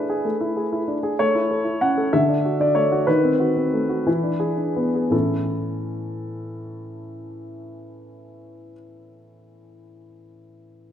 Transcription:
0.00 0.23 A3 soft
0.00 0.19 D4 soft
0.00 0.27 E4 soft
0.00 0.09 G#4 soft
0.00 0.88 B4 medium
0.09 0.34 G#4 soft
0.25 1.16 A3 soft
0.41 0.66 E4 soft
0.57 0.81 G#4 soft
0.72 0.97 E4 soft
0.88 1.12 D4 soft
1.03 1.19 G#4 soft
1.19 2.10 A3 soft
1.19 1.81 C#5 medium
1.35 1.60 E4 soft
1.51 1.75 A4 soft
1.64 1.90 E4 soft
1.81 2.07 C#4 soft
1.81 2.13 F#5 medium
1.98 2.13 A4 soft
2.13 3.05 D3 soft
2.13 2.60 E5 medium
2.29 2.54 D4 soft
2.45 2.70 F#4 soft
2.60 2.85 D4 soft
2.60 2.76 D5 medium
2.75 3.01 A3 soft
2.75 3.07 C#5 medium
2.92 3.08 F#4 soft
3.07 4.04 D#3 soft
3.07 4.77 B4 medium
3.23 3.50 C4 soft
3.40 3.66 F#4 soft
3.56 3.83 C4 soft
3.73 4.00 A3 soft
3.89 4.07 F#4 soft
4.07 5.10 E3 soft
4.23 4.52 D4 soft
4.40 4.69 G#4 soft
4.58 4.87 D4 soft
4.76 5.05 B3 soft
4.95 5.13 G#4 soft
5.10 8.71 A2 soft
5.10 8.72 E3 soft
5.10 8.73 C#4 soft
5.10 8.73 E4 soft
5.10 8.73 A4 soft

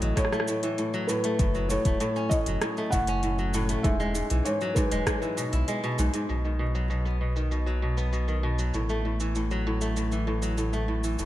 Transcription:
0.00 0.12 A1 medium
0.00 0.16 A2 medium
0.00 0.62 E3 medium
0.00 0.93 F#3 medium
0.00 0.32 A3 medium
0.00 0.35 B3 medium
0.00 0.18 D#5 loud
0.00 closed hi-hat soft
0.00 shaker soft
0.16 0.47 A2 medium
0.16 1.11 C#5 medium
0.16 kick medium
0.16 cross-stick soft
0.16 closed hi-hat soft
0.16 shaker soft
0.25 cross-stick soft
0.32 1.24 A3 medium
0.32 cross-stick soft
0.32 shaker soft
0.40 cross-stick medium
0.48 0.77 A2 medium
0.48 shaker medium
0.63 1.44 E3 medium
0.63 closed hi-hat medium
0.63 shaker soft
0.78 1.08 A2 medium
0.78 closed hi-hat soft
0.78 shaker soft
0.94 1.44 F#3 medium
0.94 shaker soft
1.07 1.39 A2 medium
1.07 1.65 B4 medium
1.07 shaker medium
1.24 1.85 A3 medium
1.24 closed hi-hat medium
1.24 shaker soft
1.39 1.77 F#1 loud
1.39 1.69 A2 medium
1.39 kick loud
1.39 closed hi-hat soft
1.39 shaker soft
1.55 2.46 F#3 medium
1.55 shaker soft
1.69 1.99 A2 loud
1.69 2.32 C#5 medium
1.69 shaker medium
1.85 1.96 E1 loud
1.85 2.77 A3 medium
1.85 kick medium
1.85 closed hi-hat medium
1.85 shaker soft
2.00 2.30 A2 loud
2.00 closed hi-hat soft
2.00 shaker soft
2.16 3.08 C#4 medium
2.16 shaker soft
2.29 2.62 A2 medium
2.29 2.93 D#5 medium
2.29 kick medium
2.29 shaker medium
2.46 2.57 F#1 medium
2.46 3.38 F#3 medium
2.46 closed hi-hat medium
2.46 shaker soft
2.61 2.92 A2 medium
2.61 cross-stick medium
2.61 closed hi-hat soft
2.61 shaker soft
2.77 3.69 A3 medium
2.77 shaker soft
2.90 3.76 F#1 medium
2.90 3.22 A2 loud
2.90 3.79 F#5 loud
2.90 kick medium
2.90 shaker medium
3.07 4.82 C#4 loud
3.07 closed hi-hat medium
3.07 shaker soft
3.23 3.53 A2 medium
3.23 closed hi-hat soft
3.23 shaker soft
3.38 3.89 F#3 medium
3.38 shaker soft
3.54 3.89 A2 loud
3.54 shaker medium
3.69 3.90 A3 medium
3.69 closed hi-hat medium
3.69 shaker soft
3.83 4.22 E1 medium
3.83 4.14 G#2 loud
3.83 4.47 E5 medium
3.83 kick loud
3.83 closed hi-hat soft
3.83 shaker soft
4.00 4.90 G#3 medium
4.00 shaker soft
4.15 4.45 G#2 medium
4.15 shaker medium
4.30 4.41 B1 loud
4.30 5.21 E3 medium
4.30 closed hi-hat medium
4.30 shaker soft
4.45 4.75 G#2 medium
4.45 4.77 C#5 medium
4.45 closed hi-hat soft
4.45 shaker soft
4.61 6.34 F#3 loud
4.61 shaker soft
4.74 5.06 G#2 loud
4.74 5.63 B4 medium
4.74 kick medium
4.74 shaker medium
4.92 5.02 E1 medium
4.92 5.67 G#3 medium
4.92 closed hi-hat medium
4.92 shaker soft
5.07 5.42 G#2 medium
5.07 kick medium
5.07 cross-stick medium
5.07 closed hi-hat soft
5.07 shaker soft
5.22 5.42 E3 medium
5.22 shaker soft
5.37 5.82 B2 medium
5.37 shaker medium
5.52 5.63 B1 medium
5.52 6.50 E4 medium
5.52 closed hi-hat medium
5.52 shaker soft
5.68 6.34 G#3 medium
5.68 closed hi-hat soft
5.68 shaker soft
5.84 6.03 B2 loud
5.84 shaker soft
5.99 6.09 B1 loud
5.99 6.13 G#2 loud
5.99 shaker medium
6.14 6.34 G#2 medium
6.14 closed hi-hat medium
6.14 shaker soft
6.29 8.71 B1 medium
6.29 6.49 B2 medium
6.29 shaker soft
6.44 6.65 D#3 medium
6.44 shaker soft
6.59 6.89 B2 medium
6.75 7.41 F#3 medium
6.75 shaker medium
6.90 7.20 B2 medium
6.90 shaker soft
7.05 7.97 B3 medium
7.05 shaker soft
7.21 7.41 B2 medium
7.36 7.57 D#3 medium
7.36 shaker medium
7.51 7.81 B2 medium
7.51 shaker soft
7.66 8.33 F#3 medium
7.66 shaker soft
7.82 8.11 B2 medium
7.97 9.84 B3 medium
7.97 shaker medium
8.13 8.33 B2 medium
8.13 shaker soft
8.28 8.48 D#3 medium
8.28 shaker soft
8.43 8.79 B2 medium
8.59 8.79 F#3 medium
8.59 shaker medium
8.74 11.16 A1 medium
8.74 9.04 A2 medium
8.74 shaker soft
8.89 9.81 A3 medium
8.89 shaker soft
9.05 9.35 A2 medium
9.20 10.11 E3 medium
9.20 shaker medium
9.35 9.66 A2 medium
9.35 shaker soft
9.51 10.41 F#3 medium
9.51 shaker soft
9.67 9.96 A2 medium
9.81 10.73 A3 medium
9.81 shaker medium
9.96 10.26 A2 medium
9.96 shaker soft
10.12 11.03 E3 medium
10.12 shaker soft
10.27 10.57 A2 medium
10.42 11.24 F#3 medium
10.42 shaker medium
10.58 10.87 A2 medium
10.58 shaker soft
10.73 11.25 A3 medium
10.73 shaker soft
10.88 11.18 A2 medium
11.04 11.24 E3 medium
11.04 shaker medium
11.19 11.25 F#1 medium
11.19 11.25 A2 medium
11.19 shaker soft

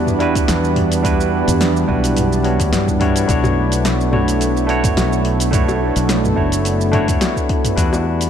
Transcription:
0.00 0.43 E2 loud
0.00 3.25 E3 medium
0.00 0.18 G3 medium
0.00 3.25 G3 medium
0.00 7.74 B3 medium
0.00 0.19 D4 medium
0.00 7.74 D4 medium
0.00 0.20 E4 medium
0.00 0.21 F#4 medium
0.00 0.22 B4 loud
0.07 mid tom medium
0.07 shaker soft
0.18 1.00 G3 medium
0.18 1.01 D4 medium
0.18 1.01 E4 medium
0.18 1.02 F#4 medium
0.18 1.02 B4 loud
0.18 open hi-hat soft
0.35 kick loud
0.35 open hi-hat soft
0.35 shaker medium
0.48 1.42 E2 medium
0.48 snare loud
0.48 open hi-hat medium
0.48 shaker medium
0.64 shaker soft
0.76 mid tom medium
0.76 open hi-hat soft
0.92 open hi-hat medium
0.92 shaker medium
1.02 1.84 G3 medium
1.02 1.85 D4 medium
1.02 1.85 E4 medium
1.02 1.86 F#4 medium
1.02 1.86 B4 loud
1.02 kick loud
1.02 open hi-hat medium
1.02 shaker medium
1.21 shaker soft
1.48 1.83 E2 loud
1.48 mid tom medium
1.48 open hi-hat soft
1.48 shaker medium
1.61 snare loud
1.61 open hi-hat medium
1.61 shaker medium
1.77 shaker soft
1.87 2.60 B1 medium
1.87 2.41 G3 medium
1.87 2.41 D4 medium
1.87 2.41 E4 medium
1.87 2.42 F#4 medium
1.87 2.42 B4 medium
1.87 kick medium
2.04 open hi-hat soft
2.04 shaker medium
2.17 mid tom medium
2.17 open hi-hat medium
2.17 shaker medium
2.33 shaker soft
2.43 2.97 G3 medium
2.43 2.97 D4 medium
2.43 2.98 E4 medium
2.43 2.98 F#4 medium
2.43 2.98 C#5 medium
2.43 open hi-hat soft
2.60 2.70 D2 loud
2.60 kick loud
2.60 open hi-hat soft
2.60 shaker medium
2.73 3.24 G2 medium
2.73 snare loud
2.73 open hi-hat medium
2.73 shaker medium
2.88 kick medium
2.88 mid tom medium
2.88 shaker soft
3.00 3.09 G3 medium
3.00 3.09 D4 medium
3.00 3.10 E4 medium
3.00 3.10 F#4 medium
3.00 3.10 C#5 loud
3.00 kick loud
3.00 open hi-hat soft
3.16 open hi-hat soft
3.16 shaker medium
3.27 4.92 B1 medium
3.27 4.09 A3 medium
3.27 7.73 A3 medium
3.27 4.09 D4 medium
3.27 4.10 E4 medium
3.27 4.10 F#4 medium
3.27 4.11 C#5 medium
3.27 kick loud
3.27 open hi-hat medium
3.27 shaker medium
3.44 mid tom medium
3.44 high bongo medium
3.44 shaker soft
3.72 open hi-hat soft
3.72 shaker medium
3.85 snare medium
3.85 open hi-hat medium
3.85 shaker medium
4.01 shaker soft
4.12 4.65 A3 medium
4.12 4.66 D4 medium
4.12 4.66 E4 medium
4.12 4.66 F#4 medium
4.12 4.66 C#5 medium
4.12 mid tom medium
4.12 high bongo medium
4.28 open hi-hat soft
4.28 shaker medium
4.41 open hi-hat medium
4.41 shaker medium
4.57 shaker soft
4.67 5.49 A3 loud
4.67 5.49 D4 medium
4.67 5.50 E4 medium
4.67 5.50 F#4 medium
4.67 5.51 C#5 loud
4.67 open hi-hat soft
4.84 kick loud
4.84 mid tom medium
4.84 open hi-hat soft
4.84 shaker medium
4.97 5.90 B1 medium
4.97 snare medium
4.97 open hi-hat medium
4.97 high bongo medium
4.97 shaker medium
5.13 shaker soft
5.25 open hi-hat soft
5.40 open hi-hat soft
5.40 shaker medium
5.51 6.33 A3 medium
5.51 6.34 D4 medium
5.51 6.34 E4 medium
5.51 6.34 F#4 medium
5.51 6.35 C#5 medium
5.51 kick loud
5.51 mid tom medium
5.51 open hi-hat medium
5.51 shaker medium
5.68 high bongo medium
5.68 shaker soft
5.96 6.32 B1 loud
5.96 open hi-hat soft
5.96 shaker medium
6.09 snare loud
6.09 open hi-hat medium
6.09 shaker medium
6.24 mid tom medium
6.24 shaker soft
6.36 7.16 F#1 medium
6.36 6.90 A3 medium
6.36 6.90 D4 medium
6.36 6.90 E4 medium
6.36 6.90 F#4 medium
6.36 6.90 C#5 medium
6.36 kick medium
6.52 open hi-hat soft
6.52 shaker medium
6.65 open hi-hat medium
6.65 shaker medium
6.81 shaker soft
6.91 7.73 A3 loud
6.91 7.74 D4 medium
6.91 7.74 E4 medium
6.91 7.75 F#4 medium
6.91 7.75 C#5 loud
6.91 mid tom medium
6.91 open hi-hat soft
7.08 kick loud
7.08 open hi-hat soft
7.08 shaker medium
7.21 snare loud
7.21 open hi-hat medium
7.21 high bongo medium
7.21 shaker medium
7.37 kick medium
7.37 shaker soft
7.49 kick loud
7.49 open hi-hat soft
7.65 mid tom medium
7.65 open hi-hat medium
7.65 shaker medium
7.75 8.30 E2 loud
7.75 8.30 E3 medium
7.75 8.30 G3 medium
7.75 8.30 B3 medium
7.75 8.30 D4 medium
7.75 8.30 E4 medium
7.75 8.30 F#4 medium
7.75 8.30 B4 medium
7.75 kick loud
7.75 open hi-hat medium
7.75 shaker medium
7.93 high bongo medium
7.93 shaker soft
8.21 open hi-hat soft
8.21 shaker medium

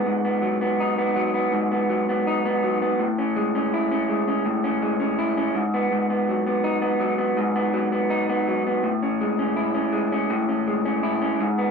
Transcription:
0.00 0.42 G#3 medium
0.00 0.23 B3 medium
0.06 1.51 G#2 medium
0.25 0.60 B3 medium
0.42 1.15 F#3 medium
0.61 0.97 B3 medium
0.80 2.26 D#4 medium
0.98 1.33 B3 medium
1.16 1.88 F#3 medium
1.34 1.70 B3 medium
1.52 2.99 G#2 medium
1.72 2.07 B3 medium
1.90 2.62 F#3 medium
2.09 2.44 B3 medium
2.27 3.07 D#4 medium
2.45 2.81 B3 medium
2.64 3.07 F#3 medium
2.82 3.07 B3 medium
2.99 4.44 A2 medium
3.18 3.54 C#4 medium
3.36 4.09 G#3 medium
3.55 3.90 C#4 medium
3.74 5.17 E4 medium
3.91 4.27 C#4 medium
4.09 4.82 G#3 medium
4.28 4.63 C#4 medium
4.46 5.55 A2 medium
4.64 4.99 C#4 medium
4.82 6.29 G#3 medium
5.00 5.36 C#4 medium
5.19 5.62 E4 medium
5.37 5.62 C#4 medium
5.55 5.91 G#2 medium
5.74 6.09 B3 medium
5.92 7.36 G#2 medium
6.10 6.45 B3 medium
6.29 6.99 F#3 medium
6.46 6.81 B3 medium
6.64 8.09 D#4 medium
6.82 7.17 B3 medium
7.00 7.72 F#3 medium
7.18 7.54 B3 medium
7.37 8.83 G#2 medium
7.55 7.91 B3 medium
7.74 8.46 F#3 medium
7.92 8.28 B3 medium
8.10 8.91 D#4 medium
8.29 8.65 B3 medium
8.48 8.92 F#3 medium
8.67 8.92 B3 medium
8.83 10.29 A2 medium
9.03 9.38 C#4 medium
9.21 9.92 G#3 medium
9.39 9.73 C#4 medium
9.56 11.02 E4 medium
9.74 10.11 C#4 medium
9.93 10.67 G#3 medium
10.12 10.48 C#4 medium
10.30 11.40 A2 medium
10.49 10.84 C#4 medium
10.67 11.71 G#3 medium
10.85 11.20 C#4 medium
11.03 11.48 E4 medium
11.22 11.48 C#4 medium
11.40 11.71 G#2 medium
11.58 11.71 B3 medium

